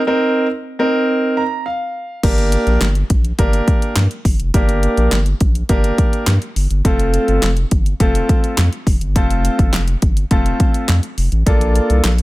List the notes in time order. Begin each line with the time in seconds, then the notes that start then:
0.07 C4 D#4 A#4
0.79 C4 D#4 A#4
1.37 A#5
1.66 F5
2.23 G1 A#3 D4 G4 A#4, kick, closed hi-hat, crash
2.38 closed hi-hat
2.52 closed hi-hat
2.67 A#1, closed hi-hat
2.81 G1, snare, clap, closed hi-hat
2.95 closed hi-hat
3.10 A#1, kick, closed hi-hat
3.25 closed hi-hat
3.38 G1 A#3 D4 G4 A#4, kick, closed hi-hat
3.53 closed hi-hat
3.68 kick, closed hi-hat
3.82 closed hi-hat
3.96 G2, snare, clap, closed hi-hat
4.11 closed hi-hat
4.25 G1, kick, open hi-hat
4.40 F1, closed hi-hat
4.54 G1 A#3 D4 G4 A#4, kick, closed hi-hat
4.69 closed hi-hat
4.83 closed hi-hat
4.97 A#1, closed hi-hat
5.11 G1, snare, clap, closed hi-hat
5.26 closed hi-hat
5.40 A#1, kick, closed hi-hat
5.55 closed hi-hat
5.69 G1 A#3 D4 G4 A#4, kick, closed hi-hat
5.84 closed hi-hat
5.98 kick, closed hi-hat
6.13 closed hi-hat
6.27 G2, snare, clap, closed hi-hat
6.42 closed hi-hat
6.56 G1, open hi-hat
6.71 G1, closed hi-hat
6.85 F1 A3 C4 F4 A4, kick, closed hi-hat
6.99 closed hi-hat
7.14 closed hi-hat
7.28 G1, closed hi-hat
7.42 F1, snare, clap, closed hi-hat
7.57 closed hi-hat
7.71 G1, kick, closed hi-hat
7.86 closed hi-hat
8.00 F1 A3 C4 F4 A4, kick, closed hi-hat
8.15 closed hi-hat
8.29 kick, closed hi-hat
8.44 closed hi-hat
8.57 F2, snare, clap, closed hi-hat
8.73 closed hi-hat
8.87 F1, kick, open hi-hat
9.01 G1, closed hi-hat
9.16 F1 A3 C4 F4 A4, kick, closed hi-hat
9.30 closed hi-hat
9.45 closed hi-hat
9.59 G1, kick, closed hi-hat
9.73 F1, snare, clap, closed hi-hat
9.88 closed hi-hat
10.02 G1, kick, closed hi-hat
10.17 closed hi-hat
10.31 F1 A3 C4 F4 A4, kick, closed hi-hat
10.46 closed hi-hat
10.60 kick, closed hi-hat
10.74 closed hi-hat
10.88 F2, snare, clap, closed hi-hat
11.03 closed hi-hat
11.18 F1, open hi-hat
11.32 A1, closed hi-hat
11.46 A#1 A#3 D4 F4 A4, kick, closed hi-hat
11.61 closed hi-hat
11.75 closed hi-hat
11.90 C2, closed hi-hat
12.04 A#1, snare, clap, closed hi-hat
12.18 closed hi-hat